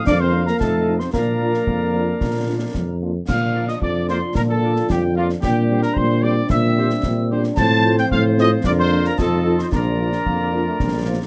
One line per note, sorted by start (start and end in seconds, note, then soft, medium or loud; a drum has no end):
0.00 1.10 F3 medium
0.00 0.97 F5 medium
0.06 0.52 F2 medium
0.06 0.61 A#3 medium
0.06 0.12 D4 loud
0.06 0.60 A#4 medium
0.06 0.20 D5 medium
0.06 0.22 D6 medium
0.06 concert bass drum medium
0.06 snare medium
0.20 0.33 C4 medium
0.20 0.45 C5 medium
0.20 0.46 C6 medium
0.33 0.43 A#3 medium
0.33 0.43 D4 medium
0.33 0.43 F4 medium
0.46 0.62 A#3 medium
0.46 0.60 A#4 medium
0.46 0.59 A#5 medium
0.46 snare soft
0.60 1.05 F2 medium
0.60 1.03 A3 medium
0.60 1.14 D#4 medium
0.60 0.98 A4 medium
0.60 0.97 D#5 medium
0.60 0.98 A5 medium
0.60 concert bass drum medium
0.60 snare medium
0.87 0.97 C4 medium
0.87 0.97 D#4 medium
0.87 0.96 F4 medium
0.99 1.12 C4 medium
0.99 1.14 C5 medium
0.99 1.05 C6 medium
0.99 snare soft
1.13 1.59 A#2 medium
1.13 2.98 F3 medium
1.13 2.97 A#3 medium
1.13 2.98 D4 medium
1.13 2.97 A#4 medium
1.13 3.02 D5 medium
1.13 2.98 F5 medium
1.13 2.97 A#5 medium
1.13 concert bass drum medium
1.13 snare medium
1.41 1.51 A#3 soft
1.41 1.51 D4 soft
1.41 1.51 F4 soft
1.54 snare soft
1.67 2.12 F2 medium
1.67 concert bass drum medium
1.94 2.04 A#3 medium
1.94 2.04 D4 medium
1.94 2.04 F4 medium
2.21 2.66 A#2 medium
2.21 concert bass drum medium
2.21 snare medium
2.48 2.57 A#3 soft
2.48 2.57 D4 soft
2.48 2.57 F4 soft
2.75 3.20 F2 medium
2.75 concert bass drum medium
2.75 snare medium
3.02 3.12 A#3 medium
3.02 3.12 D4 soft
3.02 3.12 F4 soft
3.28 3.73 A#2 medium
3.28 5.39 F3 medium
3.28 5.38 D4 medium
3.28 3.66 F5 medium
3.28 3.66 F6 medium
3.28 concert bass drum medium
3.28 snare medium
3.28 crash soft
3.53 3.65 A#3 medium
3.53 3.65 D4 soft
3.53 3.65 F4 medium
3.53 3.64 A#4 medium
3.53 3.64 D5 medium
3.68 3.75 D#5 medium
3.68 3.81 D#6 medium
3.68 snare soft
3.80 4.22 F2 medium
3.80 5.38 F4 medium
3.80 4.07 D5 medium
3.80 3.89 D6 medium
3.80 concert bass drum medium
4.09 4.19 A#3 medium
4.09 4.19 D4 medium
4.09 4.19 F4 medium
4.09 4.19 A#4 medium
4.09 4.21 C5 medium
4.09 4.19 D5 medium
4.09 4.34 C6 medium
4.09 snare soft
4.35 4.80 A#2 medium
4.35 4.42 A#4 medium
4.35 4.43 A#5 medium
4.35 concert bass drum medium
4.35 snare medium
4.50 4.87 A4 medium
4.50 4.94 A5 medium
4.62 4.73 A#3 medium
4.62 4.73 D4 soft
4.62 4.73 F4 medium
4.62 4.72 A#4 medium
4.62 4.72 D5 medium
4.76 snare soft
4.89 5.34 F2 medium
4.89 5.02 G4 medium
4.89 5.17 G5 medium
4.89 concert bass drum medium
4.89 snare medium
5.15 5.27 A#3 medium
5.15 5.27 D4 medium
5.15 5.28 F4 medium
5.15 5.27 F4 medium
5.15 5.26 A#4 medium
5.15 5.26 D5 medium
5.15 5.23 F5 medium
5.30 snare soft
5.41 5.88 A#2 medium
5.41 7.53 G3 medium
5.41 7.57 C4 medium
5.41 7.07 D4 medium
5.41 5.79 G4 medium
5.41 5.81 G5 medium
5.41 concert bass drum medium
5.41 snare medium
5.70 5.80 G3 medium
5.70 5.80 C4 soft
5.70 5.80 G4 medium
5.70 5.81 C5 medium
5.83 5.96 A#4 medium
5.83 5.99 A#5 medium
5.83 snare soft
5.94 6.41 A#2 medium
5.94 6.22 C5 medium
5.94 6.24 C6 medium
5.94 concert bass drum medium
6.23 6.34 G3 medium
6.23 6.34 C4 medium
6.23 6.33 G4 medium
6.23 6.34 G4 medium
6.23 6.33 C5 medium
6.23 6.50 D5 loud
6.23 6.31 D6 medium
6.50 6.95 A#2 medium
6.50 7.27 E5 medium
6.50 7.28 E6 medium
6.50 concert bass drum medium
6.50 snare medium
6.77 6.88 G3 medium
6.77 6.88 C4 medium
6.77 6.87 G4 medium
6.77 6.87 C5 medium
6.90 snare medium
7.03 7.49 A#2 medium
7.03 7.31 C4 medium
7.03 concert bass drum medium
7.03 snare medium
7.31 7.41 G3 medium
7.31 7.41 C4 medium
7.31 7.61 D4 medium
7.31 7.41 G4 medium
7.31 7.41 C5 medium
7.44 snare medium
7.57 8.03 A2 medium
7.57 9.68 F3 medium
7.57 8.61 C4 medium
7.57 8.66 C4 medium
7.57 8.08 F4 medium
7.57 8.08 C5 medium
7.57 7.94 A5 loud
7.57 7.95 A6 loud
7.57 concert bass drum medium
7.57 snare medium
7.57 crash soft
7.85 7.94 A3 medium
7.85 7.94 C4 medium
7.85 7.94 F4 medium
7.98 8.05 G5 medium
7.98 8.11 G6 loud
7.98 snare medium
8.11 8.57 A2 medium
8.11 8.61 F4 medium
8.11 8.61 C5 medium
8.11 8.24 F5 medium
8.11 8.18 F6 medium
8.11 concert bass drum medium
8.38 8.48 A3 medium
8.38 8.48 C4 medium
8.38 8.48 F4 medium
8.38 8.51 D#5 loud
8.38 8.46 D#6 medium
8.38 snare medium
8.63 9.10 F2 medium
8.63 9.19 A#3 medium
8.63 9.16 D4 medium
8.63 9.14 F4 medium
8.63 9.18 A#4 medium
8.63 8.72 D5 loud
8.63 8.72 D6 loud
8.63 concert bass drum medium
8.63 snare medium
8.79 9.04 C5 loud
8.79 9.04 C6 medium
8.91 9.01 A#3 medium
8.91 9.01 D4 medium
8.91 9.01 F4 medium
9.05 9.13 A#4 medium
9.05 9.20 A#5 medium
9.05 snare soft
9.18 9.64 F2 medium
9.18 9.72 D#4 medium
9.18 9.68 F4 medium
9.18 9.75 F4 medium
9.18 9.57 A4 medium
9.18 9.68 D#5 medium
9.18 9.57 A5 medium
9.18 concert bass drum medium
9.18 snare medium
9.46 9.55 C4 medium
9.46 9.55 D#4 medium
9.46 9.55 F4 medium
9.58 9.64 C6 medium
9.58 snare medium
9.63 9.68 C5 medium
9.71 10.17 A#1 medium
9.71 10.17 F3 medium
9.71 10.17 D4 soft
9.71 11.27 D4 medium
9.71 11.27 F4 medium
9.71 11.27 D5 medium
9.71 11.27 A#5 medium
9.71 concert bass drum medium
9.71 snare medium
9.75 11.27 A#4 medium
10.00 10.09 A#3 soft
10.00 10.09 D4 soft
10.00 10.09 F4 soft
10.12 snare soft
10.24 10.71 F2 medium
10.24 10.62 A#3 medium
10.24 concert bass drum medium
10.53 10.63 A#3 medium
10.53 10.62 D4 medium
10.53 10.63 F4 soft
10.67 10.79 A3 medium
10.80 11.24 A#1 medium
10.80 11.05 G3 medium
10.80 concert bass drum medium
10.80 snare medium
11.06 11.18 F3 medium
11.06 11.16 A#3 soft
11.06 11.17 D4 soft
11.06 11.17 F4 soft